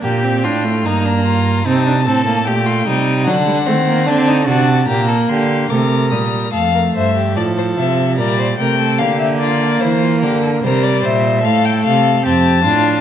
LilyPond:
<<
  \new Staff \with { instrumentName = "Violin" } { \time 4/4 \key g \minor \tempo 4 = 74 g''4 bes''4 a''4 g''4 | fis''4 a''8 a''8 bes''8 c'''8 d'''8 ees'''8 | \key f \major f''8 e''8 d''16 c''16 e''8 d''8 g''8 f''16 e''16 d''8 | c''8 bes'8 c''16 d''16 e''8 f''16 g''16 f''8 a''4 | }
  \new Staff \with { instrumentName = "Violin" } { \time 4/4 \key g \minor g'8 f'8 ees'16 d'16 f'8 ees'8 a'8 g'16 f'16 ees'8 | d'8 c'8 d'16 ees'16 fis'8 g'16 a'16 g'8 bes'4 | \key f \major a'16 bes'16 c''16 g'16 a'4 bes'16 c''16 bes'16 a'16 g'8 f'8 | e'16 f'16 g'16 a'16 bes'8 c''8 a'4 g'8 f'8 | }
  \new Staff \with { instrumentName = "Viola" } { \time 4/4 \key g \minor bes16 c'16 d'16 a16 bes4 c'16 d'16 c'16 bes16 a8 g8 | fis16 g16 a16 bes16 c'8 d'8 bes4 a8 g8 | \key f \major a4 f4 g8 a8 bes4~ | bes4 g4 a4 c'8 d'8 | }
  \new Staff \with { instrumentName = "Cello" } { \clef bass \time 4/4 \key g \minor bes,8 a,8 g,4 c8 a,8 bes,8 c8 | d8 ees8 d8 c8 bes,8 d8 c8 bes,8 | \key f \major f,8 g,8 a,8 c8 bes,8 c8 d4 | e8 d8 c8 bes,8 a,8 c8 f,8 a,8 | }
>>